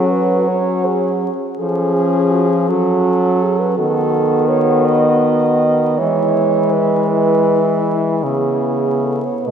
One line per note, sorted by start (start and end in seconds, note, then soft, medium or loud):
0.00 1.29 F#3 medium
0.00 0.46 C#4 medium
0.00 0.47 F#4 medium
0.00 0.12 A4 medium
0.11 0.50 B4 loud
0.48 1.32 C#4 medium
0.48 1.31 F#4 medium
0.48 0.88 C#5 loud
0.87 1.34 G#4 medium
1.58 2.71 F3 medium
1.58 2.65 C#4 medium
1.58 2.70 G#4 medium
1.58 1.95 A4 medium
1.94 2.33 G#4 medium
2.31 2.50 F#4 medium
2.50 2.69 F4 medium
2.68 3.78 F#3 medium
2.68 3.76 C#4 medium
2.68 3.44 F#4 loud
2.68 3.76 A4 medium
3.43 3.61 G#4 medium
3.59 3.77 B4 medium
3.77 6.01 D#3 medium
3.77 5.96 B3 medium
3.77 5.95 F#4 medium
3.77 4.50 A4 loud
4.49 4.87 C#5 loud
4.86 6.00 D#5 loud
5.98 8.25 E3 medium
5.98 8.21 G#3 medium
5.98 9.27 E4 medium
5.98 6.73 C#5 loud
6.72 7.10 B4 loud
7.11 7.95 B4 loud
8.24 9.29 C#3 medium
8.24 9.49 B3 medium
8.24 9.05 G#4 medium
9.04 9.26 A4 medium
9.24 9.46 C#5 medium
9.44 9.51 B2 medium
9.44 9.51 A3 medium
9.44 9.51 B4 medium
9.44 9.51 D#5 soft